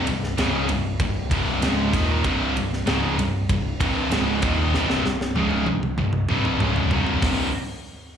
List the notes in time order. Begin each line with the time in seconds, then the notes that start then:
0.07 C1 C2 G2, ride
0.24 snare
0.37 C#1 C#2 G#2 C#3, snare, ride
0.69 C1 C2 G2, ride
0.99 C1 C2 G2, kick, ride
1.30 C1 C2 G2 C3, kick, ride
1.60 C#1 C#2 G#2 C#3, snare, ride
1.92 D#1 D#2 A#2 D#3, kick, snare, ride
2.23 C1 C2 G2 C3, kick, ride
2.54 C1 C2 G2, ride
2.73 snare
2.86 C#1 C#2 G#2 C#3, snare, ride
3.18 C1 C2 G2, ride
3.49 C1 C2 G2, kick, ride
3.80 C1 C2 G2 C3, kick, ride
4.11 C#1 C#2 G#2 C#3, snare, ride
4.42 D#1 D#2 A#2 D#3, kick, ride
4.74 C1 C2 G2 C3, snare
4.90 snare
5.04 C1 C2 G2, snare
5.21 snare
5.35 C#1 C#2 G#2 C#3, high tom
5.51 high tom
5.66 C1 C2 G2, high tom
5.83 mid tom
5.98 C1 C2 G2, mid tom
6.13 mid tom
6.29 C1 C2 G2 C3, mid tom
6.45 mid tom
6.60 C#1 C#2 G#2 C#3, mid tom
6.76 floor tom
6.91 C1 C2 G2 C3, floor tom
7.07 floor tom
7.22 C1 C2 G2 C3, kick, snare, open hi-hat